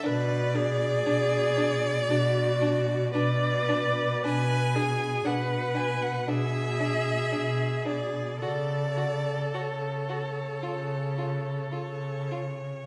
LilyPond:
<<
  \new Staff \with { instrumentName = "Violin" } { \time 4/4 \key b \dorian \tempo 4 = 57 d''2. b'4 | gis''4 fis''8 gis''16 fis''16 e''4. d''8 | d''4 cis''2 cis''4 | }
  \new Staff \with { instrumentName = "Viola" } { \time 4/4 \key b \dorian b'8 gis'4. fis'4 d''4 | b'8 gis'8 b'4 gis'2 | a'2.~ a'8 r8 | }
  \new Staff \with { instrumentName = "Violin" } { \time 4/4 \key b \dorian d'8 d'8 d'8 d'8 d'8 d'8 d'8 d'8 | d'8 d'8 d'8 d'8 d'8 d'8 d'8 d'8 | fis'8 fis'8 fis'8 fis'8 eis'8 eis'8 eis'8 eis'8 | }
  \new Staff \with { instrumentName = "Cello" } { \clef bass \time 4/4 \key b \dorian b,4 b,4 b,4 b,4 | b,4 b,4 b,4 b,4 | cis4 cis4 cis4 cis4 | }
>>